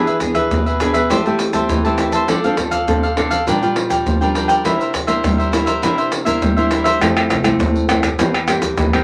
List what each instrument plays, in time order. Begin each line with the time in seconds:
Already playing: nylon-string guitar E3 B3 D4 G#4
0.07 cavaquinho G#4 B4 E5, pandeiro, shaker
0.20 nylon-string guitar B3 D4 G#4, muted cavaquinho stroke, pandeiro, shaker, surdo
0.35 cavaquinho G#4 B4 E5, pandeiro, shaker, surdo
0.51 nylon-string guitar B2, pandeiro, shaker, surdo
0.66 cavaquinho G#4 B4 E5, pandeiro, shaker
0.80 nylon-string guitar B3 D4 G#4, cavaquinho D4 G#4 B4 E5, pandeiro, shaker
0.94 cavaquinho G#4 B4 E5, pandeiro, shaker, surdo
1.10 nylon-string guitar E3 A3 C4 G4, cavaquinho G4 C5 E5 A5, pandeiro, shaker, surdo
1.25 nylon-string guitar A3 C4 G4, cavaquinho C5 E5 A5, pandeiro, shaker
1.39 muted cavaquinho stroke, pandeiro, shaker
1.53 nylon-string guitar A3 C4 G4, cavaquinho C5 E5 A5, pandeiro, shaker, surdo
1.69 nylon-string guitar E3, pandeiro, shaker, surdo
1.84 nylon-string guitar A3 C4 G4, cavaquinho C5 E5 A5, pandeiro, shaker
1.98 cavaquinho G4 C5 E5 A5, pandeiro, shaker, surdo
2.12 cavaquinho C5 E5 A5, pandeiro, shaker
2.28 nylon-string guitar F3 C4 D4 A4, cavaquinho D4 A4 D5 F5, pandeiro, shaker, surdo
2.44 nylon-string guitar C4 D4 A4, cavaquinho A4 D5 F5, pandeiro, shaker
2.57 nylon-string guitar C4 D4 A4, muted cavaquinho stroke, pandeiro, shaker, surdo
2.71 cavaquinho A4 D5 F5, pandeiro, shaker, surdo
2.88 nylon-string guitar C3 C4 D4 A4, pandeiro, shaker, surdo
3.03 cavaquinho A4 D5 F5, pandeiro, shaker
3.17 nylon-string guitar C4 D4 A4, cavaquinho D4 A4 D5 F5, pandeiro
3.31 cavaquinho A4 D5 F5, pandeiro, shaker, surdo
3.47 nylon-string guitar A#2 G3 D4 F4, cavaquinho D4 A#4 D5 G5, pandeiro, shaker, surdo
3.62 nylon-string guitar G3 D4 F4, cavaquinho A#4 D5 G5, pandeiro, shaker
3.76 muted cavaquinho stroke, pandeiro
3.90 cavaquinho A#4 D5 G5, pandeiro, shaker, surdo
4.06 nylon-string guitar F3, pandeiro, shaker, surdo
4.21 nylon-string guitar G3 D4 F4, cavaquinho A#4 D5 G5, pandeiro, shaker
4.34 cavaquinho D4 A#4 D5 G5, pandeiro, surdo
4.48 cavaquinho A#4 D5 G5, pandeiro, shaker
4.64 nylon-string guitar C3 A#3 D4 E4, cavaquinho E4 A#4 C5 E5, pandeiro, shaker, surdo
4.80 cavaquinho A#4 C5 E5, pandeiro, shaker
4.93 muted cavaquinho stroke, pandeiro, shaker, surdo
5.07 nylon-string guitar A#3 D4 E4, cavaquinho A#4 C5 E5, pandeiro, shaker, surdo
5.24 nylon-string guitar G3, pandeiro, shaker, surdo
5.38 cavaquinho A#4 C5 E5, pandeiro, shaker
5.52 nylon-string guitar A#3 D4 E4, cavaquinho E4 A#4 C5 E5, pandeiro, shaker
5.66 cavaquinho A#4 C5 E5, pandeiro, shaker, surdo
5.82 nylon-string guitar C3 A#3 D4 E4, cavaquinho E4 A#4 C5 E5, pandeiro, shaker, surdo
5.97 cavaquinho A#4 C5 E5, pandeiro, shaker
6.11 muted cavaquinho stroke, pandeiro, shaker
6.25 nylon-string guitar A#3 D4 E4, cavaquinho A#4 C5 E5, pandeiro, shaker, surdo
6.42 nylon-string guitar G3, pandeiro, shaker, surdo
6.57 nylon-string guitar A#3 D4 E4, cavaquinho A#4 C5 E5, pandeiro, shaker
6.70 cavaquinho E4 A#4 C5 E5, pandeiro, shaker
6.84 cavaquinho A#4 C5 E5, pandeiro, shaker
7.01 upright bass F2, nylon-string guitar F3 A3 C4 E4, pandeiro, tamborim, shaker, surdo
7.17 pandeiro, tamborim, shaker
7.30 upright bass C2, pandeiro, tamborim, shaker, surdo
7.44 nylon-string guitar A3 C4 E4, pandeiro, tamborim, shaker, surdo
7.60 upright bass F2, nylon-string guitar C3, pandeiro, shaker, surdo
7.75 pandeiro, shaker
7.89 nylon-string guitar A3 C4 E4, pandeiro, tamborim, shaker
8.03 pandeiro, tamborim, shaker, surdo
8.19 upright bass E2, nylon-string guitar E3 A#3 C4 G4, pandeiro, shaker, surdo
8.34 pandeiro, tamborim, shaker
8.48 nylon-string guitar A#3 C4 G4, pandeiro, tamborim, shaker
8.62 upright bass E2, pandeiro, shaker, surdo
8.78 upright bass E2, nylon-string guitar E3, pandeiro, tamborim, shaker, surdo
8.93 nylon-string guitar A#3 C4 G4, pandeiro, tamborim, shaker